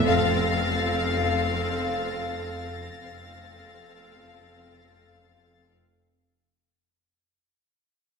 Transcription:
0.08 F1 F2 C4 A4 F5 A6 A#6
1.83 F5
3.02 F1 F2 C4 A4 F5

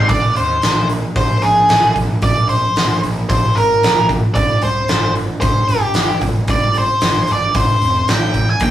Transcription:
0.09 A#1 D5, kick, open hi-hat
0.36 D#2 C5, open hi-hat
0.62 A#1, snare, open hi-hat
0.90 open hi-hat
1.16 A#1 C5, kick, open hi-hat
1.42 A#1 G#4, open hi-hat
1.69 A#1, snare, open hi-hat
1.96 A#1, kick, open hi-hat
2.22 A#1 D5, kick, open hi-hat
2.49 C5, open hi-hat
2.76 A#1, snare, open hi-hat
3.03 A#1, open hi-hat
3.29 A#1 C5, kick, open hi-hat
3.56 G#1 A#4, open hi-hat
3.82 A#1, snare, open hi-hat
4.09 kick, open hi-hat
4.35 G1 D5, kick, open hi-hat
4.62 C2 C5, open hi-hat
4.88 G1, snare, open hi-hat
5.16 open hi-hat
5.41 G1 C5, kick, open hi-hat
5.68 G1 G4, open hi-hat
5.94 G1, snare, open hi-hat
6.21 G1, kick, open hi-hat
6.48 G1 D5, kick, open hi-hat
6.74 C5, open hi-hat
7.01 G1, snare, open hi-hat
7.27 G1, open hi-hat
7.33 D5
7.54 G1 C5, kick, open hi-hat
7.82 F1, open hi-hat
8.08 A1 G5, snare, open hi-hat
8.34 kick, open hi-hat
8.50 G#5
8.60 A#1 A#3 G5, kick, open hi-hat

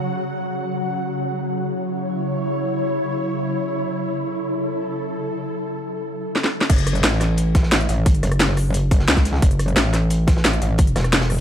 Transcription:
Already playing: C#3 F#3 F#4 F#5
1.24 E4 C#5
3.97 A4
6.36 snare
6.44 snare
6.61 snare
6.69 F#1, kick, closed hi-hat, crash
6.78 closed hi-hat
6.87 cross-stick, closed hi-hat
6.95 closed hi-hat
7.03 A1, snare, closed hi-hat
7.13 snare
7.21 cross-stick, snare, closed hi-hat
7.37 closed hi-hat
7.55 kick, snare, closed hi-hat
7.63 snare
7.72 snare, closed hi-hat
7.80 closed hi-hat
7.89 A1, closed hi-hat
8.06 kick, closed hi-hat
8.15 closed hi-hat
8.23 F#1, cross-stick, closed hi-hat
8.32 cross-stick, closed hi-hat
8.39 snare, closed hi-hat
8.49 snare
8.57 cross-stick, closed hi-hat, open hi-hat
8.74 closed hi-hat
8.91 kick, closed hi-hat
9.00 snare
9.08 C#2, snare, closed hi-hat
9.17 kick, snare, closed hi-hat
9.25 snare, closed hi-hat
9.34 snare
9.42 F#1, kick, closed hi-hat
9.51 closed hi-hat
9.59 cross-stick, closed hi-hat
9.68 closed hi-hat
9.76 A1, snare, closed hi-hat
9.85 snare
9.94 cross-stick, snare, closed hi-hat
10.10 closed hi-hat
10.27 kick, snare, closed hi-hat
10.37 snare
10.45 snare, closed hi-hat
10.53 closed hi-hat
10.62 A1, closed hi-hat
10.78 kick, closed hi-hat
10.87 closed hi-hat
10.96 E1, cross-stick, snare, closed hi-hat
11.04 cross-stick, closed hi-hat
11.13 snare, closed hi-hat
11.21 snare, closed hi-hat
11.30 cross-stick, open hi-hat

